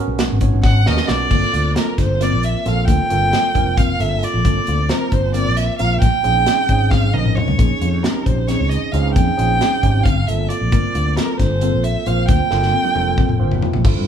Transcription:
Already playing: B3 C#4 F#4 A#4
0.08 B1
0.19 C#4, snare, closed hi-hat
0.31 G#1
0.41 B3 C#4 D#4 F#4 C#5, kick, closed hi-hat
0.54 G#1
0.63 C#4 F#5, kick, snare
0.86 D#2 B3 C#4 F#4 A#4 D#5, snare
0.97 snare
1.08 B1 F4 D5, snare
1.31 G1 A#3 C4 F4 A4, kick, crash
1.53 D2 F4, closed hi-hat
1.76 A#3 C4 F4 A4 A#4, snare, closed hi-hat
1.98 G1 D4 C5, kick, snare, closed hi-hat
2.21 A#3 C4 F4 A#4 D5, snare, closed hi-hat
2.32 A#1
2.43 E5, closed hi-hat
2.55 muted fretless electric bass stroke
2.65 A#1 A#3 C4 F4 A4 F5, closed hi-hat
2.88 D2 A#3 G5, kick, closed hi-hat
3.00 muted fretless electric bass stroke
3.10 G1 A#3 C4 F4 A4, closed hi-hat
3.33 C4, snare, closed hi-hat
3.55 F1 A#3 C4 D4 F4 A#4, kick, closed hi-hat
3.77 C4 F5, kick, closed hi-hat
4.00 G1 A#3 C4 F4 A4 E5, closed hi-hat
4.23 F4 D5, closed hi-hat
4.34 A#1
4.45 G1 A#3 C4 F4 A4, kick, closed hi-hat
4.67 D2 F4, closed hi-hat
4.89 A#3 C4 F4 A#4 C5, snare, closed hi-hat
5.12 G1 D4 C5, kick, closed hi-hat
5.34 A#3 C4 F4 A#4 D5, closed hi-hat
5.47 A#1
5.56 E5, snare, closed hi-hat
5.69 muted fretless electric bass stroke
5.78 A#1 A#3 C4 F4 A#4 F5, closed hi-hat
6.01 A#1 A#3 G5, kick, closed hi-hat
6.13 muted fretless electric bass stroke
6.23 A#1 C4 C#4 D#4 F4 G#4, closed hi-hat
6.46 C4, snare, closed hi-hat
6.68 G#1 C4 C#4 D#4 G#4, kick, closed hi-hat
6.90 C4 F5, kick, snare
7.03 high tom
7.13 A#1 C4 C#4 D#4 A#4 D#5, mid tom
7.25 mid tom
7.35 F4 C#5, floor tom
7.48 C#2, floor tom
7.58 A#1 A#3 C#4 D#4 G#4, kick, closed hi-hat
7.81 F2 F4, closed hi-hat
8.03 C4 C#4 D#4 G4 A#4, snare, closed hi-hat
8.25 A#1 C#4 C5, kick, closed hi-hat
8.48 C4 C#4 D#4 G#4 C#5, snare, closed hi-hat
8.60 C#2
8.70 D#5, closed hi-hat
8.92 C#2 C4 C#4 D#4 F4 G#4 F5, closed hi-hat
9.14 F2 A#3 G5, kick, closed hi-hat
9.27 muted fretless electric bass stroke
9.37 A#1 C4 C#4 D#4 F4 G#4, closed hi-hat
9.61 C4, snare, closed hi-hat
9.82 G#1 C4 C#4 D#4 G4, kick, closed hi-hat
10.03 G1 C4 F5, kick, closed hi-hat
10.27 G1 A#3 C4 F4 A4 E5, closed hi-hat
10.49 F4 D5, closed hi-hat
10.61 A#1
10.72 G1 A#3 C4 F4 A#4, kick, closed hi-hat
10.95 D2 F4, closed hi-hat
11.16 A#3 C4 F4 A4 A#4, snare, closed hi-hat
11.38 G1 D4 C5, kick, snare, closed hi-hat
11.61 A#3 C4 F4 A4, closed hi-hat
11.73 A#1
11.84 E5, closed hi-hat
11.95 muted fretless electric bass stroke
12.06 A#1 A#3 C4 F4 C5 F5, closed hi-hat
12.28 D2 A#3 G5, kick, closed hi-hat
12.40 muted fretless electric bass stroke
12.50 G1 A#3 C4 F4 A4, snare
12.63 snare
12.74 C4
12.84 high tom
12.95 F1 A#3 C4 D4 F4 A4, high tom
13.17 C4, kick, mid tom
13.29 mid tom
13.39 G1 A#3 C4 F4 C5 G5
13.52 floor tom
13.62 F4, floor tom
13.73 A#1, floor tom
13.84 G1 A3 C4 E4 F4 A4, kick, crash
13.97 G2

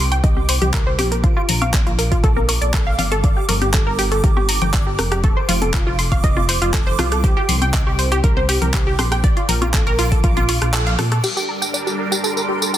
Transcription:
Already playing: C2 D6
0.12 G5, closed hi-hat, high woodblock
0.24 C2 D#5, kick, closed hi-hat
0.37 G4, high conga
0.49 C5, open hi-hat, high woodblock
0.62 C2 G4, closed hi-hat, low conga
0.74 A#4, kick, clap, closed hi-hat, high woodblock
0.87 C5
0.99 A#1 G4, open hi-hat, high conga, high woodblock
1.12 A#4, closed hi-hat
1.24 F4, kick, closed hi-hat
1.37 F4, high woodblock
1.49 A#1 A#5, open hi-hat, low conga
1.62 F5, closed hi-hat, high conga, high woodblock
1.74 D5, kick, clap, closed hi-hat
1.87 A#1 F4, closed hi-hat, high woodblock
1.99 A#4, open hi-hat
2.12 F4, kick, closed hi-hat
2.24 A#1 A4, kick, closed hi-hat, high woodblock
2.37 A#4, high conga
2.49 A#4, open hi-hat, high woodblock
2.62 A#1 D5, closed hi-hat
2.74 A4, kick, clap, closed hi-hat, high woodblock
2.87 F5
2.99 G1 F5, open hi-hat, high conga, low conga
3.12 A4, closed hi-hat, high woodblock
3.24 D5, kick, closed hi-hat, high woodblock
3.37 G4
3.49 G1 A#4, open hi-hat, low conga, high woodblock
3.62 G4, closed hi-hat, high conga
3.74 A4, kick, clap, closed hi-hat, high woodblock
3.87 G1 A#4
3.99 G4, open hi-hat
4.12 A4, closed hi-hat, high woodblock
4.24 G1 G4, kick, closed hi-hat
4.37 G4, high conga, high woodblock
4.49 A#5, open hi-hat
4.62 G1 G5, closed hi-hat, low conga, high woodblock
4.74 D5, kick, clap, closed hi-hat
4.87 G4
4.99 F1 A#4, cross-stick, open hi-hat, high conga, high woodblock
5.12 G4, cross-stick, closed hi-hat
5.24 A4, kick, closed hi-hat, high woodblock
5.37 C5
5.49 F1 F4, open hi-hat, low conga, high woodblock
5.62 A4, closed hi-hat, high conga
5.74 F4, kick, clap, closed hi-hat
5.87 F1 F4, high woodblock
5.99 C6, open hi-hat
6.12 F5, kick, closed hi-hat, high woodblock
6.24 F1 D#5, kick, closed hi-hat
6.37 F4, high conga, high woodblock
6.49 C5, open hi-hat
6.62 F1 F4, closed hi-hat
6.74 A4, kick, clap, closed hi-hat, high woodblock
6.87 C5
6.99 C2 F4, cross-stick, open hi-hat, high conga, low conga, high woodblock
7.12 A4, cross-stick, closed hi-hat
7.24 G4, kick, closed hi-hat, high woodblock
7.37 G4
7.49 C2 C6, open hi-hat, low conga
7.62 G5, closed hi-hat, high conga, high woodblock
7.74 D#5, kick, clap, closed hi-hat
7.87 C2 G4, high woodblock
7.99 C5, open hi-hat
8.12 G4, closed hi-hat, high woodblock
8.24 C2 A#4, kick, closed hi-hat
8.37 C5, high conga
8.49 G4, open hi-hat, high woodblock
8.62 C2 A#4, closed hi-hat, low conga
8.74 G4, kick, clap, closed hi-hat, high woodblock
8.87 G4
8.99 A#1 C6, cross-stick, open hi-hat, high conga, high woodblock
9.12 G5, cross-stick, closed hi-hat
9.24 D5, kick, closed hi-hat
9.37 F4, closed hi-hat, high woodblock
9.49 A#1 A#4, open hi-hat, low conga
9.62 F4, closed hi-hat, high conga, high woodblock
9.74 A4, kick, clap, closed hi-hat
9.87 A#1 A#4, closed hi-hat, high woodblock
9.99 F4, open hi-hat
10.12 A4, kick, closed hi-hat
10.24 A#1 F4, kick, closed hi-hat, high woodblock
10.37 F4, closed hi-hat, high conga
10.49 F4, open hi-hat, high woodblock
10.62 A#1 F4, cross-stick, closed hi-hat
10.74 A4, clap, closed hi-hat, high woodblock
10.87 F5, closed hi-hat
10.99 A#2 A4, cross-stick, open hi-hat, high conga, low conga
11.12 A4, cross-stick, closed hi-hat, high woodblock
11.24 G3 D4 G4 A4 A#4 C6, crash, tambourine
11.37 G4, tambourine
11.49 A#5
11.62 G5, tambourine
11.74 D5, tambourine
11.87 G4, tambourine
11.99 A#4
12.12 G4, tambourine
12.24 A4, tambourine
12.37 A#4, tambourine
12.49 G4
12.62 A4, tambourine
12.74 G4, tambourine

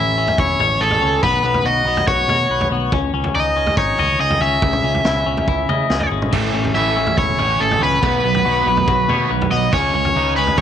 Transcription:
Already playing: A1 A3 C#4 E4 E5
0.18 C#4
0.28 floor tom
0.38 E1 E4 C#5, kick
0.59 A1 C#5, floor tom
0.80 A1 G#4 A4
0.91 floor tom
1.01 C#2 C#4
1.23 B1 B3 B4, kick, floor tom
1.43 B1 B3
1.54 floor tom
1.64 B1 F#4 D#5
1.85 B1 B3
1.97 floor tom
2.07 B1 F#4 C#5, kick
2.28 B2 C#5, floor tom
2.49 B1 B4
2.61 floor tom
2.71 B1 B3
2.92 C#2 C#4, kick, floor tom
3.13 C#2 C#4
3.24 floor tom
3.35 C#2 D#4 D#5
3.56 C#4
3.66 floor tom
3.77 G#1 D#4 C#5, kick
3.98 C#2 D#5, floor tom
4.19 C#2 G#4 D#5
4.30 floor tom
4.40 C#2 C#4 E5
4.62 C#2 C#3, kick, floor tom
4.73 mid tom
4.83 C#2 C#4
4.94 floor tom
5.05 C#2 E4, snare, mid tom
5.26 C#2 C#4
5.37 floor tom
5.47 C#2 E4, kick
5.69 C#3 D#5, floor tom
5.90 C#2 G#4, snare
6.01 floor tom
6.11 G#1 C#4
6.22 mid tom
6.32 A1 A2 E3 A3, kick, floor tom, crash
6.53 A1 A2 E3 C#4
6.64 floor tom
6.75 A1 A2 E3 A3 E4 E5
6.97 A2 E3 C#4
7.07 floor tom
7.17 E1 A2 E3 E4 C#5, kick
7.38 A1 A2 E3 A3 C#5, floor tom
7.60 A1 A2 E3 G#4 A4
7.71 floor tom
7.80 C#2 A2 E3 C#4 B4
8.02 B1 B2 F#3 B3, kick, floor tom
8.24 B1 B2 F#3 B3
8.35 floor tom
8.45 B1 B2 F#3 B3 F#4
8.66 B1 B2 F#3 B3
8.77 floor tom
8.87 B1 B2 F#3 F#4, kick
9.08 B2 F#3 B3 C#5, floor tom
9.30 B1 B2 F#3 B4
9.42 floor tom
9.51 B1 B2 F#3 B3 D#5
9.71 C#2 C#3 G#3 C#4 C#5, kick, floor tom
9.94 C#2 C#3 G#3 C#4
10.05 floor tom
10.15 C#2 C#3 G#3 C#4 D#4
10.36 C#3 G#3 C#4 B4
10.47 floor tom
10.57 G#1 C#3 G#3 D#4 C#5, kick

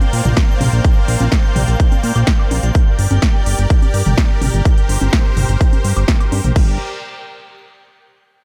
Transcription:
Already playing: A#3 A#4 C5 D5 F5 G5 G6
0.01 closed hi-hat, high conga
0.13 A#2, open hi-hat
0.25 A#1, closed hi-hat, mid tom
0.37 kick, snare, closed hi-hat
0.61 A#1, open hi-hat, mid tom, high conga
0.73 A#1, closed hi-hat
0.84 kick, closed hi-hat
1.08 A#1, open hi-hat
1.20 A#1, closed hi-hat, high conga
1.32 kick, snare, closed hi-hat
1.56 A#1, open hi-hat, mid tom
1.68 A#1, closed hi-hat
1.80 kick, closed hi-hat
1.92 closed hi-hat, high conga
2.03 A#2, open hi-hat
2.16 A#1, closed hi-hat, high woodblock
2.27 kick, snare, closed hi-hat
2.40 high woodblock
2.51 A#1, open hi-hat, high conga
2.63 A#1, closed hi-hat
2.75 G4 A#4 D5, kick, closed hi-hat
2.99 G1, open hi-hat
3.11 G1, closed hi-hat, high conga
3.22 kick, snare, closed hi-hat
3.46 G1, open hi-hat
3.58 G1, closed hi-hat
3.70 kick, closed hi-hat
3.82 closed hi-hat, high conga
3.94 G2, open hi-hat
4.06 G1, closed hi-hat, mid tom
4.18 kick, snare, closed hi-hat
4.41 G1, open hi-hat, mid tom, high conga
4.54 G1, closed hi-hat
4.65 C5, kick, closed hi-hat
4.78 closed hi-hat
4.89 G1, open hi-hat
5.01 G1, closed hi-hat, high conga
5.13 kick, snare, closed hi-hat
5.37 G1, open hi-hat, mid tom
5.49 G1, closed hi-hat
5.61 kick, closed hi-hat
5.73 closed hi-hat, high conga
5.84 G2, open hi-hat
5.97 G1, closed hi-hat, high woodblock
6.08 kick, snare, closed hi-hat
6.20 closed hi-hat, high woodblock
6.32 G2, open hi-hat, high conga
6.44 A#1, closed hi-hat, mid tom
6.56 G1 G4 A#4 D5, kick, crash

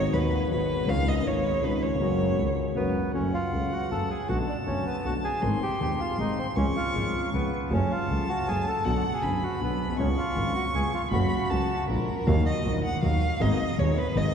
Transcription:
Already playing: G#1 G#2 D#3 G#3 B3 F#4 C#5
0.12 D#1 D#2 D#3 G#3 B3 F#4 B4
0.49 G#1 G#2 D#3 G#3 B3 F#4 B4
0.85 C#2 C#3 D#3 G#3 C#4 F5
0.90 F4
1.08 D#5
1.22 G#1 G#2 D#3 G#3 C#4 F4
1.27 C#5
1.61 C#2 C#3 D#3 G#3 C#4 F4 B4
1.83 C#5
1.99 F#1 F#2 C#3 F#3 G#3 A#3 F#4
2.37 C#2 C#3 G#3 A#3
2.41 F#4
2.75 F#1 F#2 C#3 F#3 G#3 B3 F#4 A#4
3.14 F#1 F#2 C#3 F#3 A3 C#4 F#4 F#5
3.34 F4
3.52 C#2 C#3 F#3 A3 F#4
3.72 F#4
3.91 F#1 F#2 C#3 F#3 A3 F#4 A4
4.10 G#4
4.28 B1 B2 D3 A3 B3 F#4 A5
4.49 D4
4.67 F#1 F#2 D3 A3 B3 C#4 F#4
4.86 B3
5.05 B1 B2 D3 A3 B3 F#4
5.24 G#4
5.42 G#1 G#2 D#3 G#3 C4 G#4 C6
5.63 G4
5.80 D#1 D#2 D#3 G#3 C4 G4 G#4
6.00 F4
6.18 G#1 G#2 D#3 G#3 C4 D#4 G#4
6.39 C4
6.56 C#2 C#3 F3 G#3 C#4 G#4 C#6
6.76 F4
6.94 G#1 G#2 F3 G#3 C#4 G#4
7.33 C#2 C#3 F3 G#3 B3 C#4 G#4
7.70 F#1 F#2 F#3 A3 C#4 G#4 A5
7.91 F4
8.09 C#2 C#3 F#3 A3 C#4 G#4
8.29 F#4
8.47 F#1 F#2 F#3 A3 C#4 G#4
8.68 A4
8.85 B1 B2 D3 F#3 B3 F#4 F#5
9.14 G#4
9.23 F#1 F#2 D3 F#3 B3 F#4 B5
9.43 F#4
9.61 B1 B2 D3 F#3 B3 F#4
9.80 B1
9.85 A#1
9.90 B1
9.94 C2 C#3 C#6
9.98 C#2 G#3 B3 C#4 F4
10.18 F4
10.36 G#1 G#2 C#3 G#3 B3 F4
10.55 F#4
10.74 C#2 C#3 G#3 B3 F4 G#4
10.94 F4
11.11 F#1 F#2 C#3 F#3 A3 F#4 B5
11.50 C#2 C#3 F#3 A3 F#4 A5
11.88 A#1 A#2 D3 G#3 A#3 F4 A#4
12.27 D#2 D#3 F#3 A#3 F#4 F5
12.46 D#5
12.66 A#1 A#2 D#3 F#3 A#3 F#4
12.85 F#5
13.02 D#2 D#3 F#3 A#3 F#4 F5
13.40 G#1 G#2 D#3 G#3 B3 G#4 D#5
13.78 D#1 D#2 D#3 G#3 B3 G#4 C#5
13.98 B4
14.15 G#1 G#2 D#3 G#3 B3 G#4 D#5

